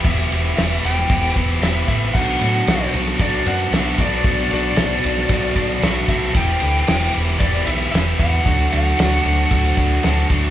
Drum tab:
CC |----------------|x---------------|----------------|----------------|
RD |x-x-x-x-x-x-x-x-|--x-x-x-x-x-x-x-|x-x-x-x-x-x-x-x-|x-x-x-x-x-x-x-x-|
SD |----o--o----o---|----o--o----o---|----o--o----o---|----o-------o---|
BD |o-------o-o---o-|o-------o-----o-|o-------o-o---o-|o-------o-----o-|

CC |----------------|
RD |x-x-x-x-x-x-x-x-|
SD |----o-------o---|
BD |o-------o-o---o-|